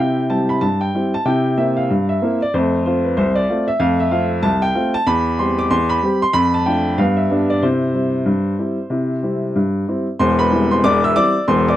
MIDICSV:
0, 0, Header, 1, 2, 480
1, 0, Start_track
1, 0, Key_signature, 0, "major"
1, 0, Tempo, 638978
1, 941, Time_signature, 2, 2, 24, 8
1, 8838, End_track
2, 0, Start_track
2, 0, Title_t, "Upright piano"
2, 0, Program_c, 0, 0
2, 0, Note_on_c, 0, 48, 73
2, 0, Note_on_c, 0, 64, 53
2, 0, Note_on_c, 0, 79, 75
2, 116, Control_c, 0, 64, 127
2, 124, Note_off_c, 0, 64, 0
2, 184, Note_off_c, 0, 48, 0
2, 221, Note_off_c, 0, 79, 0
2, 224, Note_on_c, 0, 55, 46
2, 224, Note_on_c, 0, 81, 73
2, 227, Note_on_c, 0, 60, 36
2, 231, Note_on_c, 0, 64, 39
2, 355, Note_off_c, 0, 55, 0
2, 358, Note_off_c, 0, 60, 0
2, 361, Note_off_c, 0, 64, 0
2, 365, Note_off_c, 0, 81, 0
2, 369, Note_on_c, 0, 83, 67
2, 459, Note_on_c, 0, 81, 79
2, 462, Note_on_c, 0, 43, 65
2, 463, Note_off_c, 0, 83, 0
2, 470, Control_c, 0, 64, 0
2, 603, Note_off_c, 0, 81, 0
2, 607, Note_on_c, 0, 79, 73
2, 665, Note_off_c, 0, 43, 0
2, 710, Note_on_c, 0, 55, 53
2, 713, Note_on_c, 0, 60, 45
2, 716, Note_on_c, 0, 64, 50
2, 840, Note_off_c, 0, 55, 0
2, 842, Note_off_c, 0, 60, 0
2, 843, Note_off_c, 0, 64, 0
2, 845, Note_off_c, 0, 79, 0
2, 858, Note_on_c, 0, 81, 85
2, 941, Note_on_c, 0, 48, 79
2, 944, Note_on_c, 0, 79, 74
2, 948, Note_off_c, 0, 81, 0
2, 957, Note_on_c, 0, 64, 52
2, 1069, Control_c, 0, 64, 127
2, 1085, Note_off_c, 0, 64, 0
2, 1145, Note_off_c, 0, 48, 0
2, 1181, Note_on_c, 0, 58, 39
2, 1182, Note_off_c, 0, 79, 0
2, 1183, Note_on_c, 0, 76, 72
2, 1184, Note_on_c, 0, 60, 41
2, 1189, Note_on_c, 0, 64, 42
2, 1312, Note_off_c, 0, 58, 0
2, 1315, Note_off_c, 0, 60, 0
2, 1319, Note_off_c, 0, 64, 0
2, 1325, Note_off_c, 0, 76, 0
2, 1326, Note_on_c, 0, 77, 66
2, 1427, Control_c, 0, 64, 0
2, 1430, Note_on_c, 0, 43, 69
2, 1565, Note_off_c, 0, 77, 0
2, 1570, Note_on_c, 0, 76, 73
2, 1630, Note_off_c, 0, 43, 0
2, 1669, Note_on_c, 0, 58, 54
2, 1674, Note_on_c, 0, 60, 47
2, 1677, Note_on_c, 0, 64, 52
2, 1799, Note_off_c, 0, 58, 0
2, 1802, Note_off_c, 0, 60, 0
2, 1804, Note_off_c, 0, 64, 0
2, 1806, Note_off_c, 0, 76, 0
2, 1820, Note_on_c, 0, 74, 81
2, 1907, Note_on_c, 0, 41, 77
2, 1908, Note_off_c, 0, 74, 0
2, 1908, Note_on_c, 0, 72, 75
2, 1924, Note_on_c, 0, 57, 59
2, 2033, Control_c, 0, 64, 127
2, 2049, Note_off_c, 0, 57, 0
2, 2108, Note_off_c, 0, 41, 0
2, 2134, Note_off_c, 0, 72, 0
2, 2146, Note_on_c, 0, 72, 68
2, 2148, Note_on_c, 0, 57, 43
2, 2150, Note_on_c, 0, 60, 38
2, 2152, Note_on_c, 0, 65, 50
2, 2277, Note_off_c, 0, 57, 0
2, 2279, Note_off_c, 0, 60, 0
2, 2280, Note_off_c, 0, 65, 0
2, 2285, Note_off_c, 0, 72, 0
2, 2288, Note_on_c, 0, 71, 63
2, 2381, Note_on_c, 0, 72, 81
2, 2382, Note_off_c, 0, 71, 0
2, 2383, Note_on_c, 0, 36, 80
2, 2386, Control_c, 0, 64, 0
2, 2520, Note_on_c, 0, 74, 85
2, 2522, Note_off_c, 0, 72, 0
2, 2584, Note_off_c, 0, 36, 0
2, 2621, Note_on_c, 0, 57, 53
2, 2625, Note_on_c, 0, 60, 49
2, 2627, Note_on_c, 0, 65, 57
2, 2751, Note_off_c, 0, 57, 0
2, 2754, Note_off_c, 0, 60, 0
2, 2756, Note_off_c, 0, 65, 0
2, 2759, Note_off_c, 0, 74, 0
2, 2762, Note_on_c, 0, 76, 88
2, 2851, Note_on_c, 0, 77, 86
2, 2852, Note_on_c, 0, 41, 83
2, 2857, Note_off_c, 0, 76, 0
2, 2865, Note_on_c, 0, 57, 45
2, 2994, Note_off_c, 0, 57, 0
2, 2996, Note_off_c, 0, 77, 0
2, 3004, Note_on_c, 0, 76, 82
2, 3019, Control_c, 0, 64, 127
2, 3057, Note_off_c, 0, 41, 0
2, 3086, Note_on_c, 0, 57, 51
2, 3089, Note_on_c, 0, 77, 73
2, 3091, Note_on_c, 0, 60, 46
2, 3093, Note_on_c, 0, 65, 53
2, 3098, Note_off_c, 0, 76, 0
2, 3220, Note_off_c, 0, 57, 0
2, 3223, Note_off_c, 0, 60, 0
2, 3225, Note_off_c, 0, 65, 0
2, 3325, Note_on_c, 0, 81, 96
2, 3326, Note_on_c, 0, 36, 74
2, 3331, Note_off_c, 0, 77, 0
2, 3344, Control_c, 0, 64, 0
2, 3471, Note_on_c, 0, 79, 89
2, 3472, Note_off_c, 0, 81, 0
2, 3533, Note_off_c, 0, 36, 0
2, 3566, Note_on_c, 0, 57, 52
2, 3569, Note_on_c, 0, 60, 57
2, 3569, Note_on_c, 0, 65, 55
2, 3700, Note_off_c, 0, 57, 0
2, 3702, Note_off_c, 0, 60, 0
2, 3702, Note_off_c, 0, 65, 0
2, 3713, Note_off_c, 0, 79, 0
2, 3713, Note_on_c, 0, 81, 101
2, 3806, Note_on_c, 0, 40, 83
2, 3806, Note_on_c, 0, 83, 93
2, 3811, Note_off_c, 0, 81, 0
2, 3980, Control_c, 0, 64, 127
2, 4012, Note_off_c, 0, 40, 0
2, 4048, Note_off_c, 0, 83, 0
2, 4049, Note_on_c, 0, 84, 83
2, 4052, Note_on_c, 0, 55, 43
2, 4054, Note_on_c, 0, 60, 47
2, 4057, Note_on_c, 0, 67, 46
2, 4183, Note_off_c, 0, 55, 0
2, 4185, Note_off_c, 0, 60, 0
2, 4187, Note_off_c, 0, 67, 0
2, 4192, Note_off_c, 0, 84, 0
2, 4196, Note_on_c, 0, 86, 84
2, 4286, Note_on_c, 0, 40, 84
2, 4286, Note_on_c, 0, 84, 99
2, 4291, Note_off_c, 0, 86, 0
2, 4295, Control_c, 0, 64, 0
2, 4428, Note_on_c, 0, 83, 91
2, 4431, Note_off_c, 0, 84, 0
2, 4491, Note_off_c, 0, 40, 0
2, 4527, Note_on_c, 0, 55, 49
2, 4530, Note_on_c, 0, 60, 51
2, 4534, Note_on_c, 0, 67, 59
2, 4659, Note_off_c, 0, 55, 0
2, 4661, Note_off_c, 0, 60, 0
2, 4664, Note_off_c, 0, 67, 0
2, 4669, Note_off_c, 0, 83, 0
2, 4674, Note_on_c, 0, 84, 101
2, 4758, Note_on_c, 0, 83, 102
2, 4759, Note_on_c, 0, 41, 80
2, 4770, Note_off_c, 0, 84, 0
2, 4903, Control_c, 0, 64, 127
2, 4906, Note_off_c, 0, 83, 0
2, 4912, Note_on_c, 0, 81, 80
2, 4966, Note_off_c, 0, 41, 0
2, 5003, Note_on_c, 0, 79, 75
2, 5007, Note_on_c, 0, 57, 47
2, 5008, Note_off_c, 0, 81, 0
2, 5009, Note_on_c, 0, 62, 45
2, 5012, Note_on_c, 0, 65, 46
2, 5139, Note_off_c, 0, 57, 0
2, 5140, Note_off_c, 0, 62, 0
2, 5143, Note_off_c, 0, 65, 0
2, 5243, Note_on_c, 0, 43, 81
2, 5243, Note_on_c, 0, 77, 82
2, 5245, Note_off_c, 0, 79, 0
2, 5254, Control_c, 0, 64, 0
2, 5259, Note_on_c, 0, 59, 55
2, 5383, Note_on_c, 0, 76, 71
2, 5387, Note_off_c, 0, 59, 0
2, 5388, Note_off_c, 0, 77, 0
2, 5411, Control_c, 0, 64, 127
2, 5449, Note_off_c, 0, 43, 0
2, 5486, Note_on_c, 0, 55, 49
2, 5487, Note_on_c, 0, 59, 54
2, 5492, Note_on_c, 0, 62, 59
2, 5618, Note_off_c, 0, 55, 0
2, 5619, Note_off_c, 0, 59, 0
2, 5623, Note_off_c, 0, 62, 0
2, 5627, Note_off_c, 0, 76, 0
2, 5633, Note_on_c, 0, 74, 84
2, 5727, Note_on_c, 0, 72, 73
2, 5728, Note_on_c, 0, 48, 78
2, 5729, Note_off_c, 0, 74, 0
2, 5738, Control_c, 0, 64, 0
2, 5744, Note_on_c, 0, 64, 50
2, 5855, Control_c, 0, 64, 127
2, 5872, Note_off_c, 0, 64, 0
2, 5933, Note_off_c, 0, 48, 0
2, 5966, Note_on_c, 0, 55, 36
2, 5967, Note_on_c, 0, 60, 34
2, 5973, Note_on_c, 0, 64, 43
2, 6099, Note_off_c, 0, 55, 0
2, 6100, Note_off_c, 0, 60, 0
2, 6105, Note_off_c, 0, 64, 0
2, 6202, Note_on_c, 0, 43, 68
2, 6220, Control_c, 0, 64, 0
2, 6411, Note_off_c, 0, 43, 0
2, 6450, Note_on_c, 0, 55, 46
2, 6451, Note_on_c, 0, 60, 42
2, 6456, Note_on_c, 0, 64, 47
2, 6583, Note_off_c, 0, 55, 0
2, 6584, Note_off_c, 0, 60, 0
2, 6587, Note_off_c, 0, 64, 0
2, 6685, Note_on_c, 0, 48, 65
2, 6702, Note_on_c, 0, 64, 43
2, 6832, Note_off_c, 0, 64, 0
2, 6850, Control_c, 0, 64, 127
2, 6893, Note_off_c, 0, 48, 0
2, 6934, Note_on_c, 0, 55, 38
2, 6937, Note_on_c, 0, 60, 35
2, 6941, Note_on_c, 0, 64, 41
2, 7066, Note_off_c, 0, 55, 0
2, 7069, Note_off_c, 0, 60, 0
2, 7072, Note_off_c, 0, 64, 0
2, 7175, Note_off_c, 0, 72, 0
2, 7178, Note_on_c, 0, 43, 62
2, 7184, Control_c, 0, 64, 0
2, 7382, Note_off_c, 0, 43, 0
2, 7420, Note_on_c, 0, 55, 48
2, 7427, Note_on_c, 0, 60, 50
2, 7428, Note_on_c, 0, 64, 42
2, 7552, Note_off_c, 0, 55, 0
2, 7557, Note_off_c, 0, 60, 0
2, 7557, Note_off_c, 0, 64, 0
2, 7658, Note_on_c, 0, 84, 96
2, 7659, Note_on_c, 0, 28, 76
2, 7661, Note_on_c, 0, 40, 82
2, 7666, Note_on_c, 0, 72, 79
2, 7795, Note_off_c, 0, 72, 0
2, 7801, Note_off_c, 0, 84, 0
2, 7803, Note_on_c, 0, 83, 92
2, 7804, Control_c, 0, 64, 127
2, 7812, Note_on_c, 0, 71, 69
2, 7862, Note_off_c, 0, 28, 0
2, 7864, Note_off_c, 0, 40, 0
2, 7900, Note_on_c, 0, 55, 44
2, 7902, Note_on_c, 0, 60, 45
2, 7906, Note_on_c, 0, 64, 52
2, 8030, Note_off_c, 0, 71, 0
2, 8032, Note_off_c, 0, 55, 0
2, 8033, Note_off_c, 0, 60, 0
2, 8036, Note_off_c, 0, 64, 0
2, 8042, Note_off_c, 0, 83, 0
2, 8048, Note_on_c, 0, 84, 88
2, 8056, Note_on_c, 0, 72, 65
2, 8139, Note_off_c, 0, 72, 0
2, 8140, Note_on_c, 0, 28, 85
2, 8141, Note_off_c, 0, 84, 0
2, 8142, Note_on_c, 0, 40, 80
2, 8142, Note_on_c, 0, 86, 106
2, 8147, Control_c, 0, 64, 0
2, 8151, Note_on_c, 0, 74, 81
2, 8278, Note_off_c, 0, 74, 0
2, 8283, Note_off_c, 0, 86, 0
2, 8294, Note_on_c, 0, 88, 92
2, 8301, Note_on_c, 0, 76, 73
2, 8343, Note_off_c, 0, 28, 0
2, 8344, Note_off_c, 0, 40, 0
2, 8381, Note_off_c, 0, 76, 0
2, 8383, Note_on_c, 0, 86, 106
2, 8384, Note_off_c, 0, 88, 0
2, 8385, Note_on_c, 0, 55, 55
2, 8387, Note_on_c, 0, 60, 53
2, 8389, Note_on_c, 0, 64, 57
2, 8390, Note_on_c, 0, 74, 84
2, 8515, Note_off_c, 0, 55, 0
2, 8516, Note_off_c, 0, 60, 0
2, 8518, Note_off_c, 0, 64, 0
2, 8607, Note_off_c, 0, 74, 0
2, 8619, Note_off_c, 0, 86, 0
2, 8622, Note_on_c, 0, 84, 94
2, 8623, Note_on_c, 0, 28, 78
2, 8623, Note_on_c, 0, 40, 88
2, 8629, Note_on_c, 0, 72, 70
2, 8756, Note_off_c, 0, 72, 0
2, 8762, Note_off_c, 0, 84, 0
2, 8777, Note_on_c, 0, 86, 88
2, 8783, Control_c, 0, 64, 127
2, 8787, Note_on_c, 0, 74, 73
2, 8824, Note_off_c, 0, 28, 0
2, 8824, Note_off_c, 0, 40, 0
2, 8838, Note_off_c, 0, 74, 0
2, 8838, Note_off_c, 0, 86, 0
2, 8838, End_track
0, 0, End_of_file